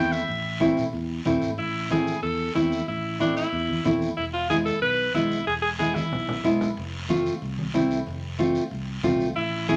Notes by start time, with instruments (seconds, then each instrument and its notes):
Already playing: fingered electric bass E2, nylon-string guitar A3 C4 E4, alto saxophone G5
0.12 alto saxophone E5, short guiro
0.28 fingered electric bass A1, long guiro
0.60 nylon-string guitar A3 C4 E4, high conga, short guiro
0.77 low conga, short guiro
0.93 fingered electric bass E2, long guiro
1.25 fingered electric bass E1, nylon-string guitar A3 C4 E4, high conga, low conga, short guiro
1.41 fingered electric bass G#1, short guiro
1.58 fingered electric bass A1, alto saxophone E4, long guiro
1.90 nylon-string guitar A3 C4 E4, alto saxophone G#4, high conga, short guiro
2.07 short guiro
2.22 fingered electric bass E2, alto saxophone A4, long guiro
2.55 fingered electric bass E2, nylon-string guitar A3 C4 E4, alto saxophone E4, high conga, short guiro
2.72 short guiro
2.88 fingered electric bass A1, alto saxophone E4, long guiro
3.20 nylon-string guitar A3 C4 E4, alto saxophone D4, high conga, short guiro
3.37 alto saxophone E4, short guiro
3.52 fingered electric bass E2, long guiro
3.69 high conga
3.85 fingered electric bass E2, nylon-string guitar A3 C4 E4, high conga, low conga, short guiro
4.02 short guiro
4.17 fingered electric bass E1, alto saxophone E4, long guiro
4.34 alto saxophone F4
4.50 nylon-string guitar G#3 B3 E4, alto saxophone G#4, high conga, short guiro
4.65 alto saxophone A4, short guiro
4.82 fingered electric bass B1, alto saxophone B4, long guiro
5.14 fingered electric bass B1, nylon-string guitar G#3 B3 E4, alto saxophone E4, high conga, short guiro
5.31 short guiro
5.47 fingered electric bass E1, alto saxophone G#4, long guiro
5.62 alto saxophone G#4
5.79 nylon-string guitar G#3 B3 E4, alto saxophone G#4, high conga, short guiro
5.95 alto saxophone E4, high conga, short guiro
6.12 fingered electric bass B1, low conga, long guiro
6.29 low conga
6.44 fingered electric bass B1, nylon-string guitar G#3 B3 E4, short guiro
6.61 low conga, short guiro
6.77 fingered electric bass F1, long guiro
7.09 nylon-string guitar A3 C4 F4, high conga, short guiro
7.26 short guiro
7.42 fingered electric bass C2, long guiro
7.58 high conga
7.74 fingered electric bass C2, nylon-string guitar A3 C4 E4, high conga, short guiro
7.91 short guiro
8.07 fingered electric bass F1, long guiro
8.39 nylon-string guitar A3 C4 F4, high conga, short guiro
8.55 short guiro
8.71 fingered electric bass C2, long guiro
9.03 fingered electric bass C2, nylon-string guitar A3 C4 F4, high conga, low conga, short guiro
9.20 short guiro
9.36 fingered electric bass A1, alto saxophone E4, long guiro
9.68 nylon-string guitar A3 C4 E4, alto saxophone G#4, high conga, short guiro